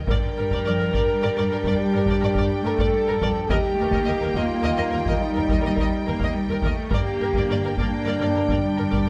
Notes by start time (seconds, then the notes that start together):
0.06 G2 D3 G3 D4 A#4 D5 G5, taiko
0.37 G2 G3 A#4
0.51 G2 A#4 D5, taiko
0.65 G2 F3 A#4 D5
0.78 G2 A#4
0.93 G2 G3 A#4 D5, taiko
1.22 G2 A#4 D5
1.36 G2 A#4 D5
1.50 G2 A#4
1.64 G2 A#4 D5, taiko
1.79 G4
1.93 G2 A#4
2.06 G2 A#4 D5, taiko
2.21 G2 A#4 D5
2.35 G2 A#4 D5, taiko
2.64 G2 A3 A4 A#4
2.78 G2 A#4 D5, taiko
2.92 G3
3.07 G2 A#4
3.21 G2 F3 A#4 D5, taiko
3.49 D#2 G3 D#4 G4 A#4 D#5 G5, taiko
3.78 D#2 A3 A#4
3.92 D#2 A#4 D#5, taiko
4.05 D#2 A#3 A#4 D#5
4.21 D#2 A#4
4.34 D#2 F4 A#4 D#5, taiko
4.63 D#2 A#4 D#5
4.77 D#2 A#4 D#5
4.91 D#2 A#4
5.06 D#2 A#4 D#5, taiko
5.20 G3 D#4
5.35 D#2 A#4
5.48 D#2 A#4 D#5, taiko
5.63 D#2 A#4 D#5
5.76 D#2 A#4, taiko
5.81 D#5
6.06 D#2 A#3 A#4
6.19 D#2 A#4, taiko
6.23 D#5
6.35 G3
6.48 D#2 A#4
6.62 D#2 A3 A#4 D#5, taiko
6.90 G2 G3 A#3 D4 G4 A#4 D5 G5, taiko
6.99 G2
7.06 G2
7.14 G2
7.20 G2 A#4
7.28 G2
7.34 G2 A#4 D5, taiko
7.43 G2
7.49 G2 A#4 D5
7.59 G2
7.63 G2 A#4
7.74 G2 A#3 D4, taiko
7.78 G2 A#4 D5
7.96 G2
8.03 G2 A#4 D5
8.11 G2
8.18 G2 A#4 D5
8.26 G2
8.34 G2 A#4
8.48 G2 A#4 D5, taiko
8.56 G2
8.63 G2 G3 D4
8.71 G2
8.78 G2 A#4
8.87 G2 A#4
8.92 G2 D5, taiko
9.02 G2